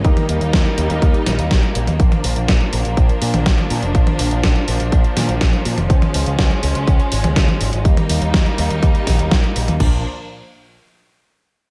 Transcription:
0.04 picked electric bass D#2, grand piano D#3 A#3 D#4 G4 A#4, string section G3 A#3 D#4, kick, closed hi-hat
0.17 closed hi-hat, high tom
0.29 picked electric bass D#2, closed hi-hat
0.41 picked electric bass D#2, closed hi-hat
0.53 picked electric bass D#2, kick, snare, closed hi-hat
0.66 closed hi-hat
0.78 picked electric bass D#2, closed hi-hat
0.90 picked electric bass D#2, grand piano D#3 A#3 D#4 G4 A#4, closed hi-hat
1.02 picked electric bass D#2, kick, closed hi-hat
1.14 closed hi-hat
1.26 picked electric bass A#1, snare, closed hi-hat, high tom
1.39 picked electric bass D#2, closed hi-hat
1.51 picked electric bass A#1, kick, snare, closed hi-hat
1.63 closed hi-hat
1.75 picked electric bass A#1, closed hi-hat
1.87 picked electric bass D#2, closed hi-hat, high tom
2.00 picked electric bass A#1, string section F3 D4, kick, closed hi-hat
2.12 closed hi-hat, high tom
2.24 picked electric bass A#1, open hi-hat
2.36 picked electric bass A#1, closed hi-hat
2.48 picked electric bass A#1, kick, snare, closed hi-hat
2.61 closed hi-hat
2.73 picked electric bass A#1, open hi-hat
2.85 picked electric bass A#1, closed hi-hat
2.97 picked electric bass A#1, kick, closed hi-hat
3.09 closed hi-hat
3.22 picked electric bass A#2, open hi-hat
3.34 picked electric bass A#1, closed hi-hat, high tom
3.46 picked electric bass A#1, kick, snare, closed hi-hat
3.58 closed hi-hat, high tom
3.70 picked electric bass A#2, open hi-hat
3.83 picked electric bass F1, closed hi-hat
3.95 picked electric bass A#1, kick, closed hi-hat
4.07 closed hi-hat, high tom
4.19 picked electric bass A#1, open hi-hat
4.31 picked electric bass A#1, closed hi-hat
4.44 picked electric bass A#1, kick, snare, closed hi-hat
4.56 closed hi-hat
4.68 picked electric bass A#1, open hi-hat
4.80 picked electric bass A#1, closed hi-hat
4.92 picked electric bass A#1, kick, closed hi-hat
5.04 closed hi-hat
5.17 picked electric bass A#2, snare, open hi-hat, high tom
5.29 picked electric bass A#1, closed hi-hat
5.41 picked electric bass A#1, kick, snare, closed hi-hat
5.53 closed hi-hat
5.65 picked electric bass A#2, open hi-hat
5.78 picked electric bass F1, closed hi-hat, high tom
5.90 picked electric bass C#2, string section G#3 C#4, kick, closed hi-hat
6.02 closed hi-hat, high tom
6.14 picked electric bass C#2, open hi-hat
6.26 picked electric bass C#2, closed hi-hat
6.39 picked electric bass C#2, kick, snare, closed hi-hat
6.51 closed hi-hat
6.63 picked electric bass C#2, open hi-hat
6.75 picked electric bass C#2, closed hi-hat
6.87 picked electric bass C#2, kick, closed hi-hat
7.00 closed hi-hat
7.12 picked electric bass G#1, open hi-hat
7.24 picked electric bass C#2, closed hi-hat, high tom
7.36 picked electric bass C#2, kick, snare, closed hi-hat
7.48 closed hi-hat, high tom
7.61 picked electric bass G#1, open hi-hat
7.73 picked electric bass G#1, closed hi-hat
7.85 picked electric bass D#2, string section G3 A#3 D#4, kick, closed hi-hat
7.97 closed hi-hat, high tom
8.09 picked electric bass D#2, open hi-hat
8.22 picked electric bass D#2, closed hi-hat
8.34 picked electric bass D#2, kick, snare, closed hi-hat
8.46 closed hi-hat
8.58 picked electric bass D#2, open hi-hat
8.70 picked electric bass D#2, closed hi-hat
8.83 picked electric bass D#2, kick, closed hi-hat
8.95 closed hi-hat
9.07 picked electric bass A#1, kick, snare, open hi-hat, high tom
9.19 picked electric bass D#2, closed hi-hat
9.31 picked electric bass A#1, kick, snare, closed hi-hat
9.44 closed hi-hat
9.56 picked electric bass A#1, open hi-hat
9.68 picked electric bass D#2, closed hi-hat, high tom
9.80 picked electric bass A#1, string section F3 A#3 D4, kick, floor tom, crash

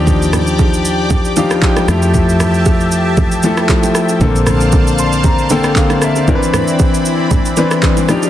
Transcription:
Already playing: fingered electric bass D#2, grand piano F3 D4 D#4 G4, analog synth pad G4 D5 G5 D6
0.07 kick, low conga, shaker
0.22 shaker
0.33 cross-stick, low conga, shaker
0.47 shaker
0.59 kick, high bongo, shaker
0.74 shaker
0.85 shaker
1.10 kick, high bongo, low conga, shaker
1.25 shaker
1.36 grand piano F3 D4 D#4 G4 F5, low bongo, shaker
1.51 cross-stick, shaker
1.62 grand piano G5, kick, clap, high bongo, shaker
1.76 cross-stick, low bongo, shaker
1.88 fingered electric bass F2, grand piano F3 A3 E4 G4 A5, analog synth pad G4 E5 A5, cross-stick, shaker
2.02 high bongo, shaker
2.14 kick, low conga, shaker
2.29 shaker
2.40 cross-stick, low conga, shaker
2.54 shaker
2.65 kick, high bongo, shaker
2.81 shaker
2.92 shaker
3.17 kick, high bongo, low conga, shaker
3.31 shaker
3.43 grand piano F3 A3 E4 A4, low bongo, shaker
3.57 cross-stick, shaker
3.69 kick, clap, high bongo, shaker
3.83 low bongo, shaker
3.95 cross-stick, shaker
4.09 high bongo, shaker
4.21 fingered electric bass A#1, grand piano D3 A#3 C4 A4, analog synth pad C5 D5 F5 A5, kick, low conga, shaker
4.36 shaker
4.47 cross-stick, low conga, shaker
4.60 shaker
4.72 kick, high bongo, shaker
4.87 shaker
4.98 grand piano C6, shaker
5.13 shaker
5.24 grand piano A#5, kick, high bongo, low conga, shaker
5.38 shaker
5.50 grand piano D3 A#3 C4 A4 G5, low bongo, shaker
5.64 cross-stick, shaker
5.76 grand piano F5, kick, clap, high bongo, shaker
5.90 cross-stick, low bongo, shaker
6.02 grand piano E5, cross-stick, shaker
6.16 high bongo, shaker
6.28 grand piano E3 C4 D4 A#4, analog synth pad C4 E4 B5, kick, low conga, shaker
6.35 grand piano B4
6.43 shaker
6.53 cross-stick, low conga, shaker
6.68 shaker
6.79 kick, high bongo, shaker
6.94 shaker
7.05 shaker
7.31 kick, high bongo, low conga, shaker
7.45 shaker
7.57 grand piano E3 C4 D4 B4, low bongo, shaker
7.71 cross-stick, shaker
7.83 kick, clap, high bongo, shaker
7.97 low bongo, shaker
8.09 grand piano F3 D4 D#4 G4, analog synth pad F4 F5 G5, cross-stick, shaker
8.23 high bongo, shaker

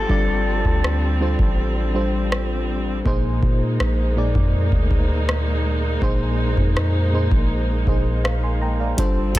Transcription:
Already playing: string section F3 G3 C4, fm electric piano G3 D4 F4 D5, clean electric guitar A4, downlifter
0.09 808-style bass G1, fm electric piano G3 D4 F4 A4 D5, kick
0.65 808-style bass D2, kick
0.84 cross-stick
1.20 fm electric piano G3 D4 F4 A4 C5
1.39 808-style bass A1, kick
1.94 fm electric piano G3 D4 F4 A4 C5
2.32 cross-stick
3.05 808-style bass A#1, fm electric piano A#2 A#3 D#4 G#4 C5, string section G#3 A#3 D#4, kick
3.43 808-style bass A#2, kick
3.80 808-style bass A#1, cross-stick
4.16 fm electric piano A#2 A#3 D#4 G#4 D5
4.35 808-style bass F2, kick
4.72 808-style bass D2, kick
4.91 kick
5.29 cross-stick
6.02 808-style bass A#1, fm electric piano A#2 A#3 D#4 G#4 C5, kick
6.57 808-style bass F2, kick
6.77 cross-stick
7.13 fm electric piano A#2 A#3 D#4 G#4 C5
7.32 808-style bass A#1, kick
7.86 808-style bass A#1, fm electric piano A#2 A#3 D#4 G#4 C5 D#5, kick
8.24 fm electric piano F5, cross-stick
8.43 fm electric piano G#5 C6
8.61 fm electric piano G5 A#5
8.80 fm electric piano D5 F5
8.97 808-style bass G1, string section F3 G3 C4, fm electric piano G3 D4 F4 A4 C5, kick, closed hi-hat
9.35 808-style bass G1, kick, closed hi-hat

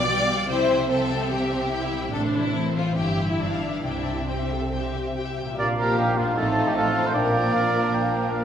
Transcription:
Already playing: double bass section B1, cello section B2, harp B2 F3 G3 D4, violin section D5
0.08 viola section G3, harp F4, violin section G5
0.20 violin section F5
0.28 harp G3, violin section G5
0.39 violin section F5
0.48 double bass section C2, cello section C3, harp C3, viola section E4, violin section C5 G5
0.60 violin section E5
0.70 harp C4, violin section G5
0.80 violin section E5
0.89 viola section C4, harp E4, violin section A4 G5
0.99 violin section E5
1.10 harp G3, violin section G5
1.21 violin section E5
1.30 harp C3, violin section G4 G5
1.41 violin section E5
1.51 harp C4, violin section G5
1.62 violin section E5
1.72 viola section E4, harp E4, violin section G5
1.82 violin section E5
1.92 harp G3, violin section G5
2.02 violin section E5
2.13 double bass section A1, harp A2, cello section A2, viola section D4, violin section A4
2.23 violin section C5
2.34 harp E3, violin section E4 A4
2.44 violin section C5
2.54 viola section C4, harp E4, violin section A4
2.64 violin section C5
2.75 harp G3, violin section F4 A4
2.86 violin section C5
2.96 double bass section G1, cello section G2, harp G2, viola section E4, violin section G4 G5
3.07 violin section E5
3.17 harp E4 C5, violin section G5
3.28 violin section E4 E5
3.39 harp G2, violin section D4 E5
3.49 violin section F5
3.61 harp E4 B4, violin section E5
3.73 violin section F5
3.83 double bass section C2, cello section C3, harp C3, violin section D4 G5, viola section E4
3.95 violin section E5
4.06 harp C4, violin section G5
4.17 violin section E5
4.28 violin section C4 G5, harp E4, viola section G4
4.39 violin section E5
4.50 harp G3, viola section A4, violin section G5
4.59 violin section E5
4.71 harp C3, viola section G4, violin section G5
4.83 violin section E5
4.94 harp C4, violin section G5
5.05 violin section E5
5.16 harp E4, viola section G4, violin section G5
5.27 violin section E5
5.37 harp A#2 G3, violin section G5
5.46 harp A#3, violin section E5
5.50 harp F4
5.55 clarinet F4, violin section A#4, harp D5, oboe F5
5.59 double bass section A#1, cello section A#2, bassoon A#3, french horn section A#3 D4, trumpet D5, flute F5
5.78 viola section F3 A#3, violin section D4 G4, trumpet A#4
5.98 double bass section A#1, cello section A#2, violin section D#4, trumpet G4
6.17 harp A2, viola section F3 A#3, violin section D4, trumpet F4
6.24 harp C4
6.28 harp F4
6.33 violin section C4 D#4 F4, harp D#5
6.37 double bass section A1, cello section A2, viola section F3 C4, french horn section F3 D#4, bassoon A3, clarinet D#4, trumpet A4, oboe A5
6.56 viola section F3 C4, violin section C4 D#4
6.66 violin section D#4, trumpet G4
6.76 double bass section A1, cello section A2, french horn section F3 D#4, violin section F4, trumpet A4, oboe F5
6.96 harp A#2, viola section F3 C4, violin section C4 D#4
7.02 harp A#3, violin section A4
7.06 harp D4, trumpet C5
7.11 double bass section A#1, cello section A#2, french horn section F3, violin section A#4, harp D5, trumpet D5
7.15 bassoon A#3, french horn section D4, clarinet D4, oboe G5
7.34 viola section F3 A#3, violin section D4
7.54 double bass section A#1, cello section A#2, oboe F5
7.73 viola section F3 A#3, violin section D4
7.92 double bass section A#1, cello section A#2, oboe G5
8.11 viola section F3 A#3, violin section D4
8.31 double bass section A#1, cello section A#2, oboe F5

